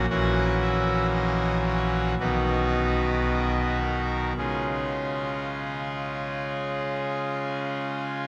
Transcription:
0.10 2.15 A#1 medium
0.10 2.15 A#2 medium
0.10 2.15 E3 medium
0.10 2.15 C#4 medium
0.10 2.15 F#4 medium
0.10 0.55 F#5 loud
0.62 1.06 E5 loud
1.14 1.58 D#5 loud
1.66 2.11 C#5 loud
2.20 4.33 B1 medium
2.20 4.33 B2 medium
2.20 4.33 D#3 medium
2.20 4.33 D#4 soft
2.20 4.33 F#4 soft
2.20 3.78 B4 loud
3.82 4.29 A#4 medium
4.38 8.27 C#3 medium
4.38 8.27 G#3 soft
4.38 8.27 C#4 soft
4.38 8.27 F4 soft
4.38 8.25 G#4 medium

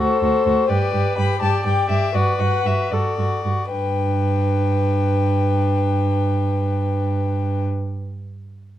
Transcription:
0.00 0.22 F#4 soft
0.00 0.69 A4 soft
0.00 0.71 C5 medium
0.22 0.30 D2 soft
0.22 0.45 F#4 soft
0.46 0.54 D2 soft
0.46 0.68 F#4 soft
0.69 0.78 G2 soft
0.69 0.93 G4 soft
0.69 1.40 B4 medium
0.69 1.17 D5 medium
0.93 1.01 G2 soft
0.93 1.17 G4 soft
1.17 1.26 G2 soft
1.17 1.40 G4 soft
1.17 1.41 B5 medium
1.41 1.49 G2 soft
1.41 1.64 G4 soft
1.41 2.13 D5 medium
1.41 1.65 A5 medium
1.65 1.73 G2 soft
1.65 1.88 G4 soft
1.65 1.89 G5 medium
1.89 1.97 G2 soft
1.89 2.14 G4 soft
1.89 2.16 E5 medium
2.14 2.22 G2 soft
2.14 2.37 F#4 soft
2.14 2.95 B4 medium
2.14 2.41 D5 medium
2.38 2.48 G2 soft
2.38 2.64 F#4 soft
2.38 2.68 F#5 medium
2.65 2.73 G2 soft
2.65 2.91 F#4 soft
2.65 2.93 E5 medium
2.91 3.00 G2 soft
2.91 3.18 F#4 soft
2.91 3.32 A4 soft
2.91 3.72 D5 soft
3.18 3.26 G2 soft
3.18 3.43 F#4 soft
3.44 3.53 G2 soft
3.44 3.71 F#4 soft
3.71 7.63 G2 soft
3.71 7.64 D4 soft
3.71 7.64 B4 soft
3.71 7.64 G5 soft

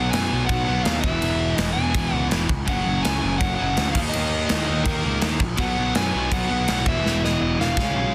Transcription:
0.00 0.10 B1 medium
0.00 0.66 B2 loud
0.00 0.67 F#3 medium
0.00 0.65 B3 loud
0.00 0.11 F#5 loud
0.11 0.29 F#2 medium
0.11 0.46 G#5 loud
0.11 snare loud
0.11 crash medium
0.32 0.47 B1 medium
0.46 0.65 B1 loud
0.46 1.03 B2 medium
0.46 0.63 F#5 loud
0.46 kick loud
0.46 crash medium
0.51 1.04 F#3 medium
0.51 1.05 B3 medium
0.64 0.83 B1 medium
0.64 0.84 B3 medium
0.64 0.83 F#5 loud
0.68 0.84 B2 medium
0.68 0.85 F#3 medium
0.83 1.01 D#2 loud
0.83 1.02 B2 medium
0.83 1.01 F5 medium
0.83 snare loud
0.83 crash medium
0.87 1.03 F#3 medium
0.87 1.05 B3 medium
1.01 1.19 E1 medium
1.01 1.93 E2 medium
1.01 1.94 B2 medium
1.01 1.54 E5 medium
1.01 kick loud
1.06 1.95 E3 loud
1.22 1.53 E1 loud
1.22 crash medium
1.54 1.73 D#5 medium
1.54 crash medium
1.58 1.74 E1 loud
1.58 snare loud
1.73 1.92 E1 medium
1.73 2.48 E3 medium
1.73 2.14 G#5 medium
1.77 2.49 E2 medium
1.77 2.49 B2 medium
1.95 2.10 E1 medium
1.95 2.12 E2 medium
1.95 2.13 B2 medium
1.95 2.11 E3 medium
1.95 kick loud
1.95 crash medium
2.12 2.28 C#2 medium
2.12 2.50 E2 medium
2.12 2.49 B2 medium
2.12 2.48 E3 medium
2.12 2.26 F#5 medium
2.31 2.47 E1 medium
2.31 snare loud
2.31 crash medium
2.49 2.65 C#2 medium
2.49 kick loud
2.65 2.83 F#1 loud
2.65 3.56 F#2 medium
2.65 3.58 C#3 medium
2.65 3.02 F#5 loud
2.65 kick loud
2.65 crash medium
2.69 3.58 F#3 loud
2.87 3.02 F#1 medium
3.03 3.21 C#2 loud
3.03 3.37 G#5 loud
3.03 snare loud
3.03 crash medium
3.23 3.38 F#1 medium
3.38 3.56 F#1 medium
3.38 3.94 F#2 medium
3.38 3.94 C#3 medium
3.38 3.54 F#5 loud
3.38 kick loud
3.38 crash medium
3.43 3.96 F#3 medium
3.56 3.80 F#3 medium
3.56 3.91 F#5 loud
3.60 3.76 F#1 medium
3.60 3.76 F#2 medium
3.60 3.77 C#3 medium
3.77 3.93 D2 medium
3.77 3.94 F#2 medium
3.77 3.94 C#3 loud
3.77 3.97 F#3 loud
3.77 snare loud
3.77 crash medium
3.92 4.11 D#2 medium
3.92 4.83 D#3 medium
3.92 3.97 F5 medium
3.92 kick loud
3.92 crash loud
3.97 4.85 A#3 loud
3.97 4.87 D#4 medium
4.09 4.45 D#5 loud
4.13 4.45 D#2 loud
4.13 crash medium
4.47 4.86 D#5 medium
4.47 snare loud
4.47 crash medium
4.51 4.66 D#2 loud
4.67 4.84 D#2 loud
4.67 5.41 D#3 medium
4.67 5.40 A#3 medium
4.67 5.39 D#4 medium
4.83 5.01 D#2 loud
4.83 5.02 D#3 medium
4.83 5.03 A#3 medium
4.83 5.18 A#4 medium
4.83 kick loud
4.83 crash medium
4.89 5.02 D#4 medium
5.03 5.20 C#2 medium
5.03 5.41 D#3 medium
5.03 5.40 A#3 medium
5.03 5.39 D#4 medium
5.21 5.38 D#2 medium
5.21 snare loud
5.21 crash medium
5.40 5.56 A#1 medium
5.40 kick loud
5.56 5.74 B1 loud
5.56 6.47 B2 medium
5.56 6.49 F#3 medium
5.56 5.96 F#5 loud
5.56 kick loud
5.56 crash medium
5.61 6.46 B3 medium
5.78 5.93 B1 medium
5.95 6.11 F#2 loud
5.95 6.33 G#5 loud
5.95 snare loud
5.95 crash medium
6.15 6.29 B1 loud
6.30 6.47 B1 loud
6.30 6.84 B2 medium
6.30 6.86 F#3 medium
6.30 6.86 B3 medium
6.30 6.49 F#5 loud
6.30 kick loud
6.30 crash medium
6.48 6.66 B1 loud
6.48 6.67 F#3 medium
6.48 6.66 B3 medium
6.48 6.88 F#5 loud
6.52 6.66 B2 medium
6.67 6.84 B1 medium
6.67 6.84 B2 medium
6.67 6.85 F#3 medium
6.67 6.86 B3 medium
6.67 snare loud
6.67 crash medium
6.85 7.02 E1 medium
6.85 7.75 E2 loud
6.85 7.76 B2 medium
6.85 7.77 E3 loud
6.85 7.21 E5 loud
6.85 kick loud
7.05 7.35 E1 loud
7.05 snare medium
7.25 7.41 D#5 medium
7.25 snare medium
7.41 7.56 E1 medium
7.41 7.58 D#5 medium
7.58 7.79 E1 medium
7.58 7.77 E2 medium
7.58 7.76 B2 medium
7.58 7.75 E3 medium
7.58 8.15 F5 medium
7.58 snare medium
7.76 7.92 C#2 loud
7.76 8.15 C#3 medium
7.76 8.15 G#3 loud
7.76 kick loud
7.76 snare loud
7.81 8.15 C#4 medium
7.96 8.11 B1 loud

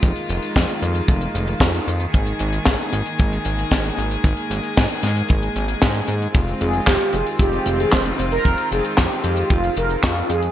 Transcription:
0.00 0.13 F1 loud
0.00 6.31 D#3 medium
0.00 2.10 G#3 medium
0.00 2.12 A#3 medium
0.00 2.10 F4 medium
0.00 kick loud
0.00 closed hi-hat medium
0.16 closed hi-hat medium
0.29 0.39 F1 loud
0.29 closed hi-hat loud
0.43 closed hi-hat medium
0.56 0.66 F2 medium
0.56 kick loud
0.56 snare loud
0.56 closed hi-hat medium
0.70 closed hi-hat medium
0.82 1.02 F2 loud
0.82 closed hi-hat medium
0.95 closed hi-hat medium
1.08 1.28 F1 medium
1.08 kick loud
1.08 closed hi-hat medium
1.21 closed hi-hat medium
1.35 1.54 F1 loud
1.35 closed hi-hat medium
1.48 closed hi-hat soft
1.60 1.80 F2 loud
1.60 kick loud
1.60 snare loud
1.60 closed hi-hat medium
1.75 closed hi-hat medium
1.87 2.07 F2 medium
1.87 closed hi-hat medium
2.00 closed hi-hat medium
2.14 2.33 G#1 loud
2.14 10.52 G#3 medium
2.14 6.31 A#3 medium
2.14 6.31 G#4 medium
2.14 kick loud
2.14 closed hi-hat medium
2.27 closed hi-hat medium
2.39 2.59 G#1 loud
2.39 closed hi-hat loud
2.53 closed hi-hat medium
2.65 2.76 G#1 medium
2.65 kick loud
2.65 snare loud
2.65 closed hi-hat medium
2.79 closed hi-hat medium
2.93 3.02 G#1 medium
2.93 closed hi-hat loud
3.06 closed hi-hat medium
3.19 3.39 G#1 medium
3.19 kick loud
3.19 closed hi-hat medium
3.33 closed hi-hat medium
3.45 3.65 G#1 medium
3.45 closed hi-hat loud
3.58 closed hi-hat soft
3.71 3.91 G#1 medium
3.71 kick loud
3.71 snare loud
3.71 closed hi-hat medium
3.85 closed hi-hat medium
3.98 4.17 G#1 medium
3.98 closed hi-hat medium
4.11 closed hi-hat medium
4.24 4.34 G#1 loud
4.24 kick loud
4.24 closed hi-hat medium
4.37 closed hi-hat medium
4.50 4.60 G#1 loud
4.50 closed hi-hat medium
4.63 closed hi-hat medium
4.77 4.87 G#2 medium
4.77 kick loud
4.77 snare loud
4.77 closed hi-hat medium
4.90 closed hi-hat medium
5.03 5.23 G#2 loud
5.03 snare soft
5.03 closed hi-hat loud
5.16 closed hi-hat medium
5.29 5.49 G#1 medium
5.29 kick loud
5.29 closed hi-hat medium
5.42 closed hi-hat medium
5.56 5.75 G#1 loud
5.56 closed hi-hat medium
5.68 closed hi-hat medium
5.82 6.02 G#2 loud
5.82 kick loud
5.82 snare loud
5.82 closed hi-hat medium
5.94 closed hi-hat medium
6.08 6.28 G#2 medium
6.08 closed hi-hat medium
6.22 closed hi-hat medium
6.34 6.54 F1 loud
6.34 10.52 D#3 medium
6.34 10.52 C4 medium
6.34 10.52 F4 medium
6.34 kick loud
6.34 closed hi-hat medium
6.48 closed hi-hat medium
6.61 6.80 F1 loud
6.61 6.88 G#4 loud
6.61 closed hi-hat medium
6.74 closed hi-hat soft
6.87 6.97 F1 loud
6.87 7.14 G4 medium
6.87 kick loud
6.87 snare loud
6.87 clap loud
6.87 closed hi-hat medium
7.01 closed hi-hat soft
7.13 7.23 F1 medium
7.13 7.26 G#4 loud
7.13 closed hi-hat medium
7.27 closed hi-hat medium
7.39 7.59 F1 medium
7.39 7.81 G4 loud
7.39 kick loud
7.39 closed hi-hat medium
7.53 closed hi-hat soft
7.66 7.86 F1 medium
7.66 closed hi-hat loud
7.79 7.93 G#4 medium
7.79 closed hi-hat medium
7.92 8.12 F1 medium
7.92 8.04 C5 loud
7.92 kick loud
7.92 snare loud
7.92 clap medium
7.92 closed hi-hat medium
8.05 closed hi-hat medium
8.19 8.38 F1 loud
8.19 8.25 C5 loud
8.19 closed hi-hat medium
8.32 8.69 A#4 loud
8.32 closed hi-hat medium
8.45 8.55 F1 loud
8.45 kick loud
8.45 closed hi-hat medium
8.58 closed hi-hat medium
8.71 8.81 F1 loud
8.71 8.83 G#4 medium
8.71 closed hi-hat medium
8.85 closed hi-hat medium
8.97 9.08 F2 medium
8.97 9.52 G4 loud
8.97 kick loud
8.97 snare loud
8.97 clap medium
8.97 closed hi-hat medium
9.11 closed hi-hat medium
9.24 9.44 F2 loud
9.24 closed hi-hat medium
9.37 closed hi-hat medium
9.50 9.70 F1 medium
9.50 9.75 F4 loud
9.50 kick loud
9.50 closed hi-hat medium
9.64 closed hi-hat medium
9.77 9.96 F1 loud
9.77 10.01 A#4 loud
9.77 closed hi-hat loud
9.90 closed hi-hat medium
10.03 10.23 F2 loud
10.03 10.30 F4 medium
10.03 kick loud
10.03 snare loud
10.03 clap loud
10.03 closed hi-hat medium
10.17 closed hi-hat medium
10.30 10.49 F2 medium
10.30 10.52 G#4 loud
10.30 closed hi-hat loud
10.43 closed hi-hat medium

